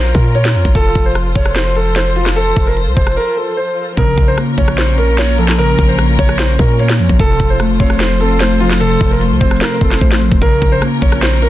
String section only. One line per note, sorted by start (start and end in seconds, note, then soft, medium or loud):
0.00 0.72 C#4 medium
0.00 3.93 F4 medium
0.00 0.72 A#4 loud
0.75 3.94 F3 medium
0.75 3.94 A4 medium
0.75 3.94 C5 medium
3.97 7.16 C#4 medium
3.97 7.16 F4 medium
3.97 7.16 A#4 loud
7.19 10.38 F3 medium
7.19 10.38 F4 medium
7.19 10.38 A4 medium
7.19 10.38 C5 loud
10.42 11.49 C#4 medium
10.42 11.49 F4 medium
10.42 11.49 A#4 loud